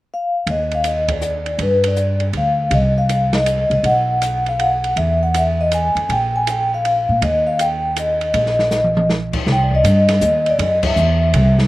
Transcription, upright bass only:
0.46 D#2
1.58 G2
2.33 D2
2.71 C2
3.70 C2
3.83 B1
4.96 E2
5.95 F2
6.09 A#1
7.09 A#2
7.21 D#2
8.34 A#1
9.46 C2
9.84 G2
10.21 D#2
10.59 F#2
10.96 E2
11.34 C2

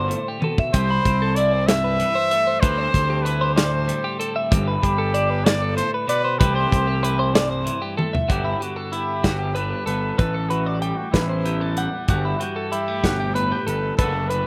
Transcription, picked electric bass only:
Already playing: G1
0.74 C2
1.06 C2
2.63 D2
2.94 D2
4.52 G1
4.83 G1
6.41 C2
6.72 C2
8.30 G1
9.24 G1
9.87 G1
10.19 A1
11.14 A1
12.09 G1
13.04 G1
13.67 G1
13.99 F#1

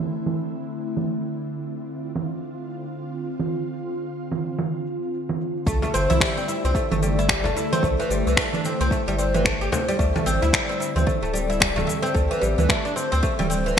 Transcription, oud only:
5.67 A3
5.83 A3
5.94 C4
6.10 E4
6.21 G3
6.37 C4
6.48 E4
6.65 C4
6.76 A3
6.92 A3
7.03 G3
7.19 E4
7.30 G3
7.45 A3
7.57 E4
7.73 C4
7.84 A3
8.00 E3
8.10 G3
8.27 E3
8.38 A3
8.54 D4
8.65 C4
8.81 C4
8.92 A3
9.08 G3
9.19 C4
9.34 E3
9.45 A3
9.61 G4
9.72 C4
9.88 G3
9.99 A3
10.16 A3
10.26 C4
10.42 E4
10.53 G3
10.69 C4
10.80 E4
10.96 C4
11.07 A3
11.23 A3
11.33 G3
11.50 E4
11.60 G3
11.76 A3
11.87 E4
12.03 C4
12.14 A3
12.31 E3
12.41 G3
12.58 E3
12.69 A3
12.85 D4
12.96 C4
13.12 C4
13.23 A3
13.39 G3
13.50 C4
13.66 E3

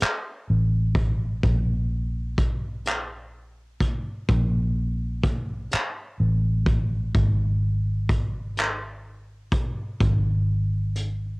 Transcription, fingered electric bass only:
0.02 muted fingered electric bass stroke
0.50 A1
1.44 A#1
4.30 A#1
5.74 muted fingered electric bass stroke
6.20 A1
7.15 G#1
10.01 G#1

